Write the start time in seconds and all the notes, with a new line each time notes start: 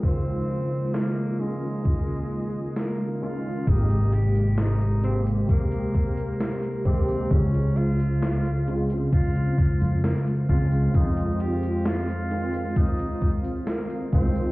Already playing: F3 G#3
0.02 C#3 D#3 G#3 A#3 C4 D#4 F4, kick
0.94 A#3, snare
1.39 D#3 G#3 C#4 F4
1.85 kick
2.76 A#3, snare
3.21 D#3 G#3 C#4 F4
3.66 G#1 C3 G#3 A#3 D#4 G4 A#4 C5, kick, closed hi-hat, tambourine
3.90 closed hi-hat, tambourine
4.12 G4, closed hi-hat
4.35 closed hi-hat, tambourine
4.58 D#4, snare, closed hi-hat, tambourine
4.81 closed hi-hat, tambourine
5.02 C3 G#3 A#3 C4 G4, closed hi-hat
5.27 closed hi-hat, tambourine
5.49 A#3 A#5, kick, closed hi-hat, tambourine
5.72 closed hi-hat, tambourine
5.94 kick, closed hi-hat
6.17 closed hi-hat, tambourine
6.40 A#3, snare, closed hi-hat, tambourine
6.63 closed hi-hat, tambourine
6.85 D#2 C3 G#3 A#3 C4 G4, kick, closed hi-hat
7.09 tambourine
7.30 C#2 C#3 G#3 C#4 F4 C5 F5, kick, closed hi-hat, tambourine
7.54 closed hi-hat, tambourine
7.77 F4, closed hi-hat
8.00 closed hi-hat, tambourine
8.23 snare, closed hi-hat, tambourine
8.45 closed hi-hat, tambourine
8.66 C#3 G#3 C4 F4, closed hi-hat
8.90 closed hi-hat, tambourine
9.13 F4, kick, closed hi-hat, tambourine
9.36 closed hi-hat, tambourine
9.58 kick, closed hi-hat
9.81 F2, closed hi-hat, tambourine
10.04 A#3, snare, closed hi-hat, tambourine
10.27 closed hi-hat, tambourine
10.49 C#2 C#3 G#3 C4 F4, kick, closed hi-hat
10.72 tambourine
10.94 F2 D#3 G#3 C4 D#4 F4 D#5, kick, closed hi-hat, tambourine
11.17 closed hi-hat, tambourine
11.40 G4, closed hi-hat
11.63 closed hi-hat, tambourine
11.85 F4, snare, closed hi-hat, tambourine
12.08 closed hi-hat, tambourine
12.30 D#3 G#3 C4 F4, closed hi-hat
12.54 closed hi-hat, tambourine
12.76 D#4, kick, closed hi-hat, tambourine
12.99 closed hi-hat, tambourine
13.22 kick, closed hi-hat
13.44 closed hi-hat, tambourine
13.67 A#3, snare, closed hi-hat, tambourine
13.90 closed hi-hat, tambourine
14.12 C2 D#3 G#3 C4 F4, kick, closed hi-hat
14.36 tambourine